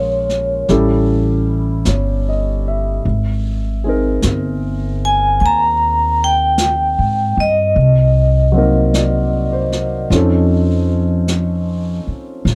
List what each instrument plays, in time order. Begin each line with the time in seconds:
Already playing: upright bass A#1, grand piano G#3 A#3 C#4 F4 A#4, vibraphone C#5
0.29 snare
0.68 upright bass A1, grand piano G3 C#4 E4 G4 A4, brush sweep, snare
1.85 upright bass G1, grand piano C#5, brush sweep, snare, hi-hat pedal
2.29 grand piano D#5
2.68 grand piano E5
3.04 upright bass G#1, brush sweep
3.84 grand piano C4 D#4 G#4
3.89 grand piano A#4
4.22 upright bass G1, brush sweep, snare, hi-hat pedal
5.05 vibraphone G#5
5.40 upright bass D#2, vibraphone G#5, brush sweep
5.46 vibraphone A#5
6.24 vibraphone G5
6.58 brush sweep, snare, hi-hat pedal
6.99 upright bass G#2
7.37 upright bass G2, vibraphone D#5
7.75 upright bass C2, brush sweep
8.52 grand piano F#3 A#3 C4
8.56 grand piano D#4 A#4
8.94 grand piano D5, brush sweep, snare, hi-hat pedal
9.53 grand piano C5
9.72 snare
10.10 upright bass F2, grand piano F3 C4 C#4 D#4, brush sweep, snare
10.15 grand piano A4
11.28 brush sweep, snare, hi-hat pedal
12.07 muted upright bass stroke
12.45 upright bass A#1, brush sweep, snare